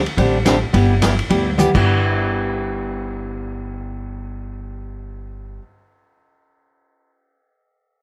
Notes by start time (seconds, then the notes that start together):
0.06 ride
0.17 A1 D3 G3 C4 D4 G4, kick, ride
0.45 D3 G3 C4 D4 G4, kick, snare, hi-hat pedal, ride
0.73 G1 G3 B3 E4 G4, kick, ride
1.02 G3 B3 E4 G4, kick, snare, hi-hat pedal, ride
1.19 ride
1.30 D2 G3 B3 E4 G4, kick, ride
1.58 G3 B3 E4 G4, hi-hat pedal, mid tom
1.74 G1 G3 B3 E4 G4, kick, crash